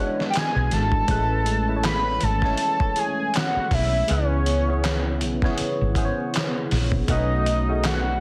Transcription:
Already playing: E3 G3 G#3 B3 D4 E4 C#5 E5
0.00 F#4 B4
0.20 snare
0.30 G5, closed hi-hat
0.36 G#5, snare, clap
0.56 B1
0.71 G#1 A5, snare, closed hi-hat
0.92 kick
1.08 A1 E3 G#3 A3 C#4 E4 B4, kick, closed hi-hat
1.46 closed hi-hat
1.68 A3 C#4 E4 G#4 B4
1.76 C#5
1.84 B5, snare, clap, closed hi-hat
2.21 G#1 A5, closed hi-hat
2.42 G#3 A3 C#4 E4 C#5, kick, snare
2.57 closed hi-hat
2.80 kick
2.96 A3 C#4 E4 G#4 C#5 G#5, closed hi-hat
3.34 F#5, snare, clap, closed hi-hat
3.56 muted fretless electric bass stroke
3.71 B1 E5, kick, snare, open hi-hat
4.07 C#2 C#3 B3 C#4 E4 G#4 B4, closed hi-hat
4.11 C#5
4.46 closed hi-hat
4.68 B3 C#4 E4 G#4 C#5
4.84 snare, clap, closed hi-hat
5.21 B1, closed hi-hat
5.42 B3 C#4 E4 G#4 C#5, kick, snare
5.58 muted fretless electric bass stroke, closed hi-hat
5.81 G#1
5.95 B3 C#4 E4 G#4 C5, kick, closed hi-hat
6.05 C#5
6.34 snare, clap, closed hi-hat
6.71 A#1, snare, open hi-hat
6.92 kick
7.07 B1 A3 B3 C#4 D#4 F#4 B4 D#5, kick, closed hi-hat
7.46 closed hi-hat
7.68 A3 C#4 D#4 F#4 G#4
7.84 F#5, snare, clap, closed hi-hat

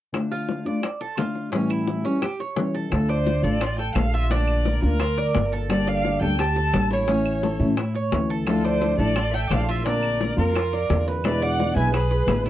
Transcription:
0.13 D3 A3 D4 F4, high bongo, claves
0.31 F4, high bongo
0.49 high bongo
0.65 A3 D4 F4 D5
0.83 muted nylon-string guitar stroke, high bongo, claves
1.01 A4, high bongo
1.17 D3 A3 D4 F4, high bongo, low bongo, claves
1.35 high bongo
1.52 A2 E3 G3 C#4 E4, high bongo
1.70 E4, claves
1.87 high bongo
2.04 E3 G3 C#4 E4, high bongo
2.22 G4, muted nylon-string guitar stroke, high bongo, claves
2.40 C#5, high bongo
2.56 E3 G3 C#4 E4, high bongo, low bongo
2.74 A4, high bongo
2.90 D2 D3 A3 D4 F4 A4, high bongo, claves
3.09 C5 D5, high bongo
3.27 high bongo
3.43 A1 A3 D4 F4 A4 D5
3.61 F4, muted nylon-string guitar stroke, high bongo, claves
3.78 A4 G5, high bongo
3.95 A#1 D3 A3 D4 F4 F5, high bongo, low bongo, claves
4.13 F4 E5, high bongo
4.30 D3 A#3 D4 F4 D5, high bongo
4.48 claves
4.65 A#4, high bongo
4.82 D2 A#3 D4 F4 A#4, high bongo
5.00 F4, muted nylon-string guitar stroke, high bongo, claves
5.18 D5, high bongo
5.34 G1 D3 A#3 D4 F4, high bongo, low bongo
5.52 A4, high bongo
5.69 D3 G3 A#3 D4 A4 D5, high bongo, claves
5.87 D5 F5, high bongo
6.05 high bongo
6.21 D2 G3 A#3 D4 A4 G5
6.38 G4 A5, muted nylon-string guitar stroke, high bongo, claves
6.56 A4, high bongo
6.73 A1 G3 A#3 D4 A4, high bongo, low bongo, claves
6.91 E4 C#5, high bongo
7.07 E3 A3 C#4 E4, high bongo
7.26 claves
7.43 A4, high bongo
7.60 A2 A3 C#4 E4, high bongo
7.77 E4, muted nylon-string guitar stroke, high bongo, claves
7.95 C#5, high bongo
8.12 D2 E3 A3 C#4 E4, high bongo, low bongo
8.30 A4, high bongo
8.46 D3 F3 A3 D4 E4 F4 A4, high bongo, claves
8.64 A4 C5 D5, high bongo
8.82 high bongo
8.97 A1 F3 A3 D4 E4 A4 D5
9.16 F4, muted nylon-string guitar stroke, high bongo, claves
9.32 A4 E5 G5, high bongo
9.49 A#1 F3 A3 D4 E4 D5 F5, high bongo, low bongo, claves
9.67 F4 C5 E5, high bongo
9.85 D3 A#3 C4 D4 F4 A#4 D5, high bongo
10.03 claves
10.21 A#4, high bongo
10.37 F2 A#3 C4 F4 A#4, high bongo
10.54 F4, muted nylon-string guitar stroke, high bongo, claves
10.73 D5, high bongo
10.89 E2 D3 A#3 C4 F4, high bongo, low bongo
11.08 B4, high bongo
11.23 B2 D3 G#3 B3 E4 B4 D5, high bongo, claves
11.42 D5 F#5, high bongo
11.60 high bongo
11.75 B1 D3 G#3 B3 E4 B4 E5 G#5
11.93 G#4 B4, muted nylon-string guitar stroke, high bongo, claves
12.11 B4, high bongo
12.27 A1 D3 G#3 B3 E4, high bongo, low bongo, claves
12.46 E4 A4, high bongo

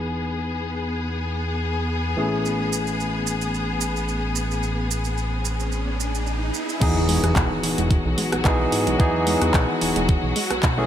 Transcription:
Already playing: E2 E3 B3 D#4 G#4, impact
2.17 A1 E3 A3 C#4 G#4
2.45 riser, maracas
2.73 maracas
2.87 maracas
3.00 maracas
3.27 maracas
3.41 maracas
3.54 maracas
3.81 maracas
3.96 maracas
4.08 maracas
4.35 maracas
4.51 maracas
4.63 maracas
4.91 maracas
5.04 maracas
5.18 maracas
5.45 maracas
5.60 maracas
5.72 maracas
6.00 maracas
6.15 maracas
6.27 maracas
6.54 maracas
6.69 maracas
6.80 E2 D#3 E3 F#3 B3 D#4 F#4 G#4, kick, closed hi-hat, crash, impact
6.96 E3
7.09 G#3, open hi-hat
7.24 E2 B3, cross-stick, closed hi-hat
7.36 B1 D#4, kick, clap, closed hi-hat
7.51 D#3
7.63 E3, open hi-hat
7.78 E1 G#3, closed hi-hat
7.91 D#3, kick, closed hi-hat
8.05 B1 E3
8.18 G#3, open hi-hat
8.32 B1 B3, cross-stick, closed hi-hat
8.44 B1 E3 B3 D#4 G#4, kick, clap, closed hi-hat
8.60 D#3
8.72 G#2 E3, open hi-hat
8.87 B1 G#3, closed hi-hat
8.99 E2 D#3 E3 B3 D#4 G#4, kick, closed hi-hat
9.14 E3
9.27 G#3, open hi-hat
9.41 E2 B3, cross-stick, closed hi-hat
9.54 B1 D#4, kick, clap, closed hi-hat
9.69 D#3
9.81 E1 E3, open hi-hat
9.96 E1 G#3, closed hi-hat
10.09 D#3, kick, closed hi-hat
10.23 B1 E3
10.36 G#3, open hi-hat
10.51 B1 B3, cross-stick, closed hi-hat
10.63 B1 D#4, kick, clap, closed hi-hat
10.77 D#3 E3 A3 C#4 G#4

